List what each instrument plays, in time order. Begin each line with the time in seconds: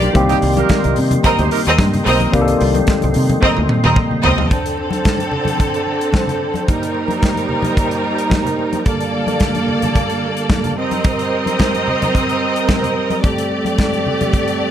Already playing: tine electric piano F3 G3 A#3 D4 G4, string section A#3 G4 D5, tonewheel organ A#4 F5 G5 C6
0.02 closed hi-hat, high conga
0.13 fingered electric bass C2, tine electric piano D#3 G3 A#3 C4 G4, tonewheel organ A#3 D#5 C6, kick, closed hi-hat
0.29 horn section C4 D#4 G4, closed hi-hat
0.42 fingered electric bass C2, open hi-hat, muted conga
0.57 horn section D#4 G4 A#4, closed hi-hat, high conga
0.69 kick, snare, closed hi-hat
0.83 fingered electric bass C2, closed hi-hat, high conga
0.96 fingered electric bass C3, open hi-hat, muted conga, low conga
1.11 closed hi-hat, high conga, low conga
1.23 string section C4 A#4 D#5, kick, closed hi-hat, muted conga, high conga
1.39 fingered electric bass D2, horn section D#4 G4 C5, closed hi-hat
1.51 horn section D#4 G4 A#4, open hi-hat, muted conga
1.65 fingered electric bass D#2, string section C4 A#4 D#5, closed hi-hat
1.78 fingered electric bass G2, kick, snare, closed hi-hat, muted conga, high conga
1.93 closed hi-hat, low conga
2.06 fingered electric bass B1, string section C4 A#4 D#5, open hi-hat
2.20 closed hi-hat, high conga
2.32 fingered electric bass C2, tine electric piano D#3 G3 A#3 C4 G4, kick, closed hi-hat
2.41 tine electric piano A4
2.48 closed hi-hat
2.61 fingered electric bass C2, open hi-hat, muted conga
2.74 closed hi-hat, high conga
2.87 kick, snare, closed hi-hat, muted conga
3.01 fingered electric bass C2, closed hi-hat, high conga
3.14 fingered electric bass C3, open hi-hat, muted conga, low conga
3.29 closed hi-hat, high conga, low conga
3.42 string section C4 A#4 D#5, kick, high tom, high conga
3.57 fingered electric bass D2, high tom
3.69 mid tom, muted conga
3.84 fingered electric bass D#2, string section C4 A#4 D#5, mid tom
3.96 kick, high conga
4.11 low conga
4.24 fingered electric bass C#2, string section C4 A#4 D#5, floor tom, muted conga
4.38 floor tom, high conga
4.51 string section D3 C4 A4, tonewheel organ D4 A4 C5 G5, kick, closed hi-hat
4.66 closed hi-hat
4.77 muted conga
4.91 closed hi-hat, high conga
5.04 kick, snare, closed hi-hat, muted conga
5.18 closed hi-hat, high conga
5.31 muted conga, low conga
5.45 closed hi-hat, high conga, low conga
5.57 kick, closed hi-hat, muted conga, high conga
5.74 closed hi-hat
5.87 muted conga
6.01 closed hi-hat
6.13 kick, snare, closed hi-hat, muted conga, high conga
6.27 closed hi-hat, low conga
6.54 closed hi-hat, high conga
6.67 string section G3 D#4 A#4, tonewheel organ A#3 D#4 G5, kick, closed hi-hat, muted conga
6.83 closed hi-hat
6.94 muted conga
7.08 closed hi-hat, high conga
7.21 kick, snare, closed hi-hat, muted conga
7.35 closed hi-hat, high conga
7.49 muted conga, low conga
7.62 closed hi-hat, high conga, low conga
7.75 kick, closed hi-hat, muted conga, high conga
7.91 closed hi-hat
8.04 muted conga
8.18 closed hi-hat
8.30 kick, snare, closed hi-hat, muted conga, high conga
8.45 closed hi-hat, low conga
8.59 muted conga
8.73 closed hi-hat, high conga
8.85 tonewheel organ D3 G3 A4 F5, string section A#3 A4 D5, kick, closed hi-hat
9.01 closed hi-hat
9.14 muted conga
9.27 closed hi-hat, high conga
9.40 kick, snare, closed hi-hat
9.55 closed hi-hat, high conga
9.68 muted conga, low conga
9.82 closed hi-hat, high conga, low conga
9.94 kick, closed hi-hat, muted conga, high conga
10.10 closed hi-hat
10.24 muted conga
10.37 closed hi-hat
10.50 kick, snare, closed hi-hat, muted conga, high conga
10.64 closed hi-hat, low conga
10.78 string section C4 A#4 D#5, tonewheel organ C4 A#4 D#5, muted conga
10.91 closed hi-hat, high conga
11.04 kick, closed hi-hat, muted conga
11.19 closed hi-hat
11.33 muted conga
11.46 closed hi-hat, high conga
11.59 kick, snare, closed hi-hat
11.74 closed hi-hat, high conga
11.88 muted conga, low conga
12.02 closed hi-hat, high conga, low conga
12.15 kick, closed hi-hat
12.29 closed hi-hat
12.56 closed hi-hat
12.68 kick, snare, closed hi-hat, muted conga, high conga
12.83 closed hi-hat, low conga
12.97 muted conga
13.10 closed hi-hat, high conga
13.23 string section A3 G4 D5, tonewheel organ A4 D5, kick, closed hi-hat
13.38 closed hi-hat
13.52 muted conga
13.65 closed hi-hat, high conga
13.78 kick, snare, closed hi-hat
13.93 closed hi-hat, high conga
14.06 low conga
14.21 closed hi-hat, high conga, low conga
14.32 kick, closed hi-hat, muted conga, high conga
14.48 closed hi-hat
14.61 muted conga